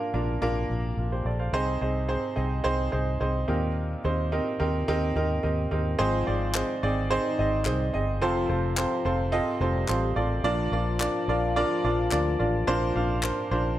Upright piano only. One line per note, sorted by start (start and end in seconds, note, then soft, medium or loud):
0.00 1.56 A#2 medium
0.00 1.55 F3 medium
0.00 0.14 A#3 medium
0.00 0.14 D4 medium
0.00 0.14 F4 medium
0.00 0.14 A#4 medium
0.14 0.39 A#3 medium
0.14 0.39 D4 medium
0.14 0.39 F4 medium
0.14 0.39 A#4 medium
0.42 0.67 A#3 loud
0.42 0.67 D4 medium
0.42 0.67 F4 medium
0.42 0.67 A#4 loud
0.98 1.12 F4 soft
0.98 1.11 A#4 medium
1.12 1.26 G4 medium
1.12 1.25 C5 medium
1.26 1.39 A4 medium
1.26 1.39 D5 medium
1.39 1.52 C5 medium
1.39 1.66 F5 medium
1.53 2.33 C3 medium
1.53 1.79 C4 loud
1.53 1.79 D#4 loud
1.53 1.79 G#4 loud
1.53 1.79 C5 loud
1.81 2.07 C4 medium
1.81 2.07 D#4 medium
1.81 2.07 G#4 medium
1.81 2.07 C5 medium
2.08 2.34 C4 medium
2.08 2.34 D#4 medium
2.08 2.34 G#4 medium
2.08 2.34 C5 medium
2.36 2.62 C4 medium
2.36 2.62 D#4 medium
2.36 2.62 G#4 medium
2.36 2.62 D#5 medium
2.64 2.90 C4 loud
2.64 2.90 D#4 loud
2.64 2.90 G#4 medium
2.64 2.90 C5 loud
2.92 3.18 C4 medium
2.92 3.18 D#4 medium
2.92 3.18 G#4 medium
2.92 3.18 C5 medium
3.20 3.46 C4 medium
3.20 3.46 D#4 medium
3.20 3.46 G#4 medium
3.20 3.46 C5 medium
3.48 4.28 A#2 medium
3.48 3.99 C4 medium
3.48 3.99 D#4 medium
3.48 3.99 G4 medium
3.48 3.99 A#4 medium
4.04 4.30 C4 medium
4.04 4.30 D#4 medium
4.04 4.30 G4 medium
4.04 4.30 C5 medium
4.32 4.58 C4 medium
4.32 4.58 D#4 medium
4.32 4.58 G4 medium
4.32 4.58 A#4 medium
4.60 4.85 C4 medium
4.60 4.85 D#4 medium
4.60 4.85 G4 medium
4.60 4.85 A#4 loud
4.88 5.13 C4 loud
4.88 5.13 D#4 loud
4.88 5.13 G4 loud
4.88 5.13 A#4 loud
5.16 5.41 C4 medium
5.16 5.41 D#4 medium
5.16 5.41 G4 medium
5.16 5.41 A#4 loud
5.43 5.69 C4 medium
5.43 5.69 D#4 medium
5.43 5.69 G4 medium
5.43 5.69 A#4 medium
5.43 5.95 D#5 medium
5.71 5.97 C4 medium
5.71 5.97 D#4 medium
5.71 5.97 G4 medium
5.71 5.97 A#4 medium
5.99 6.78 G#2 medium
5.99 6.78 D#3 medium
5.99 6.24 C4 loud
5.99 6.24 D#4 loud
5.99 6.24 G#4 loud
5.99 6.24 C5 loud
6.27 6.52 C4 medium
6.27 6.52 D#4 medium
6.27 6.52 G#4 medium
6.27 6.52 D5 medium
6.55 6.80 C4 medium
6.55 6.81 D#4 medium
6.55 6.81 G#4 medium
6.55 6.80 C5 medium
6.83 7.08 C4 medium
6.83 7.08 D#4 medium
6.83 7.08 G#4 medium
6.83 7.08 D5 medium
7.10 7.36 C4 loud
7.10 7.36 D#4 loud
7.10 7.36 G#4 loud
7.10 7.36 C5 loud
7.39 7.64 C4 medium
7.39 7.64 D#4 medium
7.39 7.64 G#4 medium
7.39 7.64 D#5 medium
7.66 7.91 C4 medium
7.66 7.91 D#4 medium
7.66 7.91 G#4 medium
7.66 7.91 C5 medium
7.93 8.19 C4 medium
7.93 8.19 D#4 medium
7.93 8.19 G#4 medium
7.93 8.19 D#5 medium
8.22 9.01 C3 medium
8.22 8.47 C4 loud
8.22 8.47 F4 loud
8.22 8.47 A4 loud
8.22 8.47 C5 loud
8.49 8.75 C4 medium
8.49 8.75 F4 medium
8.49 8.75 A4 medium
8.49 8.75 C5 medium
8.77 9.03 C4 medium
8.77 9.03 F4 medium
8.77 9.03 A4 medium
8.77 9.03 C5 loud
9.05 9.31 C4 medium
9.05 9.31 F4 medium
9.05 9.31 A4 medium
9.05 9.31 C5 medium
9.32 9.58 C4 loud
9.32 9.58 F4 medium
9.32 9.58 A4 medium
9.32 9.58 D#5 loud
9.61 9.86 C4 medium
9.61 9.86 F4 medium
9.61 9.86 A4 medium
9.61 9.87 C5 medium
9.89 10.14 C4 medium
9.89 10.14 F4 medium
9.89 10.14 A4 medium
9.89 10.14 C5 medium
10.16 10.42 C4 medium
10.16 10.42 F4 medium
10.16 10.42 A4 medium
10.16 10.42 D5 medium
10.44 11.24 A#2 medium
10.44 11.24 F3 medium
10.44 10.70 D4 loud
10.44 10.70 F4 loud
10.44 10.70 A#4 loud
10.44 10.70 D5 loud
10.72 10.98 D4 medium
10.72 10.98 F4 medium
10.72 10.98 A#4 medium
10.72 10.98 D5 medium
11.00 11.26 D4 medium
11.00 11.26 F4 medium
11.00 11.26 A#4 medium
11.00 11.26 D5 loud
11.29 11.54 D4 medium
11.29 11.54 F4 medium
11.29 11.54 A#4 medium
11.29 11.54 D5 medium
11.56 11.82 D4 loud
11.56 11.81 F4 loud
11.56 11.82 A#4 loud
11.56 11.82 D5 loud
11.85 12.10 D4 medium
11.85 12.10 F4 medium
11.85 12.10 A#4 medium
11.85 12.10 D5 medium
12.12 12.37 D4 medium
12.12 12.37 F4 medium
12.12 12.37 A#4 medium
12.12 12.37 D5 medium
12.39 12.65 D4 medium
12.39 12.65 F4 medium
12.39 12.65 A#4 medium
12.39 12.65 D5 medium
12.67 13.47 A#2 medium
12.67 13.47 F3 medium
12.67 12.93 D4 loud
12.67 12.93 F4 loud
12.67 12.93 A#4 loud
12.67 12.93 C5 loud
12.95 13.21 D4 medium
12.95 13.21 F4 medium
12.95 13.21 A#4 medium
12.95 13.21 F5 medium
13.23 13.49 D4 medium
13.23 13.49 F4 medium
13.23 13.49 A#4 medium
13.23 13.49 C5 medium
13.51 13.77 D4 medium
13.51 13.77 F4 medium
13.51 13.77 A#4 medium
13.51 13.77 C5 medium